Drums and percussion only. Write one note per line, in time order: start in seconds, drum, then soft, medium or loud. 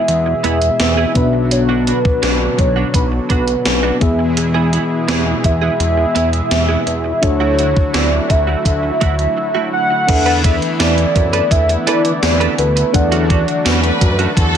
0.08 closed hi-hat medium
0.44 closed hi-hat medium
0.61 closed hi-hat soft
0.80 snare loud
0.80 closed hi-hat medium
1.15 kick medium
1.15 closed hi-hat medium
1.51 closed hi-hat medium
1.87 closed hi-hat medium
2.05 kick loud
2.23 snare loud
2.23 closed hi-hat medium
2.58 kick medium
2.58 closed hi-hat medium
2.94 kick medium
2.94 closed hi-hat medium
3.30 kick medium
3.30 closed hi-hat medium
3.48 closed hi-hat soft
3.65 snare loud
3.65 closed hi-hat medium
4.01 kick loud
4.01 closed hi-hat medium
4.37 closed hi-hat medium
4.73 closed hi-hat medium
5.08 snare loud
5.08 closed hi-hat medium
5.44 kick medium
5.44 closed hi-hat medium
5.80 closed hi-hat medium
6.16 closed hi-hat medium
6.33 closed hi-hat medium
6.51 snare loud
6.51 closed hi-hat medium
6.87 closed hi-hat medium
7.23 kick loud
7.23 closed hi-hat medium
7.59 closed hi-hat medium
7.77 kick loud
7.94 snare loud
7.94 closed hi-hat medium
8.30 kick medium
8.30 closed hi-hat medium
8.65 kick medium
8.65 closed hi-hat medium
9.01 kick medium
9.01 closed hi-hat medium
9.19 closed hi-hat soft
10.09 kick loud
10.09 closed hi-hat loud
10.09 crash loud
10.26 closed hi-hat soft
10.44 kick medium
10.44 closed hi-hat medium
10.62 closed hi-hat medium
10.80 snare loud
10.80 closed hi-hat medium
10.80 tambourine medium
10.98 closed hi-hat medium
11.16 kick medium
11.16 closed hi-hat medium
11.33 closed hi-hat medium
11.51 kick medium
11.51 closed hi-hat medium
11.69 closed hi-hat medium
11.87 closed hi-hat medium
12.05 closed hi-hat medium
12.23 snare loud
12.23 closed hi-hat medium
12.23 tambourine medium
12.41 closed hi-hat medium
12.58 closed hi-hat medium
12.77 closed hi-hat soft
12.94 kick loud
12.94 closed hi-hat loud
13.12 closed hi-hat soft
13.30 kick medium
13.30 closed hi-hat medium
13.48 closed hi-hat soft
13.66 snare loud
13.66 closed hi-hat medium
13.66 tambourine medium
13.84 closed hi-hat medium
14.01 kick medium
14.01 closed hi-hat medium
14.19 closed hi-hat medium
14.37 kick medium
14.37 closed hi-hat medium